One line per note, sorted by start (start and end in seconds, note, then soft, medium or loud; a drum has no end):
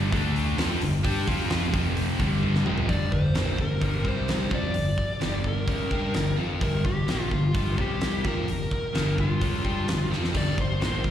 0.00 0.11 G2 loud
0.00 0.11 D3 loud
0.00 0.11 G3 loud
0.12 0.55 D2 medium
0.12 0.57 D3 medium
0.12 0.58 A3 loud
0.12 0.58 D4 medium
0.12 kick loud
0.12 open hi-hat medium
0.36 open hi-hat medium
0.58 0.79 F2 loud
0.58 0.80 F3 loud
0.58 0.80 C4 medium
0.58 0.81 F4 loud
0.58 snare loud
0.58 open hi-hat medium
0.81 1.02 G1 medium
0.81 1.00 G2 medium
0.81 1.00 D3 medium
0.81 open hi-hat medium
1.04 1.26 G2 loud
1.04 1.26 G3 loud
1.04 1.27 D4 loud
1.04 1.27 G4 loud
1.04 kick loud
1.04 open hi-hat medium
1.27 1.70 F2 medium
1.27 1.73 F3 medium
1.27 1.73 C4 medium
1.27 1.73 F4 medium
1.27 kick loud
1.27 open hi-hat medium
1.50 snare loud
1.50 open hi-hat medium
1.74 2.16 F1 medium
1.74 2.19 F2 medium
1.74 2.19 C3 medium
1.74 2.19 F3 medium
1.74 kick loud
1.74 open hi-hat medium
1.97 open hi-hat medium
2.19 2.62 G1 medium
2.19 2.65 G2 loud
2.19 2.65 D3 loud
2.19 2.65 G3 loud
2.19 kick loud
2.19 open hi-hat medium
2.43 high tom medium
2.55 snare medium
2.65 2.87 F1 medium
2.65 2.88 F2 medium
2.65 2.88 C3 medium
2.65 2.88 F3 loud
2.65 mid tom medium
2.78 floor tom loud
2.88 3.10 G1 medium
2.88 3.10 G2 medium
2.88 3.11 D3 loud
2.88 3.11 G3 loud
2.88 3.13 D5 loud
2.88 kick loud
2.88 open hi-hat medium
3.11 3.33 G1 medium
3.11 3.30 G2 medium
3.11 3.30 D3 medium
3.11 3.60 C5 medium
3.11 kick medium
3.34 3.57 A#1 medium
3.34 3.57 A#2 medium
3.34 3.57 F3 loud
3.34 3.57 A#3 loud
3.34 snare loud
3.34 open hi-hat medium
3.58 3.80 G1 medium
3.58 3.77 G2 medium
3.58 3.77 D3 medium
3.58 4.07 A#4 medium
3.58 kick medium
3.80 4.03 G1 medium
3.80 4.03 G2 medium
3.80 4.04 D3 medium
3.80 4.04 G3 medium
3.80 kick loud
3.80 open hi-hat medium
4.04 4.48 C2 medium
4.04 4.50 C3 loud
4.04 4.50 G3 loud
4.04 4.50 C4 loud
4.04 4.50 C5 medium
4.04 kick medium
4.28 snare loud
4.28 open hi-hat medium
4.50 4.73 F2 medium
4.50 4.73 F3 medium
4.50 4.74 C4 medium
4.50 4.74 F4 medium
4.50 kick loud
4.54 5.49 D5 medium
4.74 4.96 G1 medium
4.74 4.93 G2 medium
4.74 4.93 D3 medium
4.74 open hi-hat medium
4.98 kick medium
5.21 5.64 G1 medium
5.21 5.67 G2 loud
5.21 5.67 D3 loud
5.21 5.67 G3 medium
5.21 snare loud
5.21 open hi-hat medium
5.44 6.35 A#4 medium
5.44 kick medium
5.68 5.89 C#2 medium
5.68 5.90 C#3 medium
5.68 5.91 G#3 loud
5.68 5.91 C#4 loud
5.68 kick loud
5.68 open hi-hat soft
5.91 6.13 G2 medium
5.91 6.14 G3 medium
5.91 6.14 D4 loud
5.91 6.14 G4 loud
5.91 kick medium
6.14 6.36 G1 medium
6.14 6.34 G2 medium
6.14 6.34 D3 medium
6.14 snare loud
6.14 open hi-hat medium
6.38 6.59 F2 medium
6.38 6.61 F3 medium
6.38 6.61 C4 loud
6.38 6.61 F4 medium
6.61 6.83 G1 medium
6.61 6.84 G2 medium
6.61 6.84 D3 loud
6.61 6.84 G3 loud
6.61 6.85 A#4 loud
6.61 kick loud
6.61 open hi-hat medium
6.85 7.06 G1 medium
6.85 7.04 G2 medium
6.85 7.04 D3 medium
6.85 7.29 G4 loud
6.85 kick medium
7.08 7.29 A#1 medium
7.08 7.31 A#2 medium
7.08 7.31 F3 loud
7.08 7.31 A#3 medium
7.08 snare loud
7.08 open hi-hat medium
7.31 7.53 G1 medium
7.31 7.51 G2 medium
7.31 7.51 D3 medium
7.31 7.80 F4 medium
7.31 kick medium
7.54 7.76 G1 medium
7.54 7.78 G2 medium
7.54 7.78 D3 loud
7.54 7.78 G3 loud
7.54 kick loud
7.54 open hi-hat medium
7.78 8.21 C2 medium
7.78 8.24 C3 medium
7.78 8.24 G3 medium
7.78 8.24 C4 medium
7.78 8.23 G4 medium
7.78 kick medium
8.01 snare loud
8.01 open hi-hat medium
8.24 8.47 F2 medium
8.24 8.47 F3 medium
8.24 8.47 C4 medium
8.24 8.48 F4 medium
8.24 9.16 A#4 medium
8.24 kick loud
8.48 8.70 G1 medium
8.48 8.67 G2 medium
8.48 8.67 D3 medium
8.48 open hi-hat medium
8.71 kick medium
8.95 9.38 G1 medium
8.95 9.41 G2 medium
8.95 9.41 D3 loud
8.95 9.41 G3 loud
8.95 snare loud
8.95 open hi-hat medium
9.18 10.08 F4 medium
9.18 kick medium
9.41 9.63 C#2 medium
9.41 9.64 C#3 medium
9.41 9.64 G#3 medium
9.41 9.64 C#4 medium
9.41 kick loud
9.41 open hi-hat medium
9.64 9.86 G2 medium
9.64 9.87 G3 loud
9.64 9.87 D4 loud
9.64 9.88 G4 loud
9.64 kick medium
9.87 10.09 G1 medium
9.87 10.07 G2 medium
9.87 10.07 D3 medium
9.87 snare loud
9.87 open hi-hat medium
10.11 10.33 F2 medium
10.11 10.33 F3 medium
10.11 10.33 C4 medium
10.11 10.34 F4 medium
10.11 snare medium
10.24 snare medium
10.33 10.56 G1 medium
10.33 10.56 G2 medium
10.33 10.56 D3 loud
10.33 10.57 G3 medium
10.33 10.57 D5 loud
10.33 kick loud
10.33 open hi-hat medium
10.33 splash medium
10.57 10.79 G1 medium
10.57 10.76 G2 medium
10.57 10.76 D3 medium
10.57 11.02 C5 loud
10.57 kick loud
10.80 11.02 A#1 medium
10.80 11.03 A#2 loud
10.80 11.03 F3 loud
10.80 11.03 A#3 medium
10.80 snare loud
10.80 open hi-hat medium
11.03 11.11 G1 medium
11.03 11.11 G2 medium
11.03 11.11 D3 medium
11.03 11.11 A#4 medium
11.03 kick medium